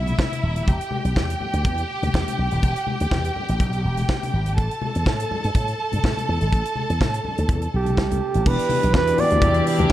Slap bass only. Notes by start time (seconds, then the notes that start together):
Already playing: B1
0.43 D#1
0.68 E1
1.05 B1
1.16 E2
1.53 D2
1.65 E2
2.03 D2
2.14 E2
2.39 B1
2.52 D#1
2.63 E1
3.01 D2
3.11 E2
3.49 A1
3.60 B1
3.85 E1
4.33 G#1
4.58 A1
4.96 E2
5.06 A2
5.45 G2
5.55 A2
5.93 G2
6.04 A2
6.29 E2
6.41 G#1
6.53 A1
6.90 E2
7.01 A2
7.38 D2
7.49 E2
7.74 B1
7.97 C2
8.11 C2
8.35 A1
8.46 E1
8.84 B1
8.94 E2
9.32 D2
9.42 E2
9.80 D2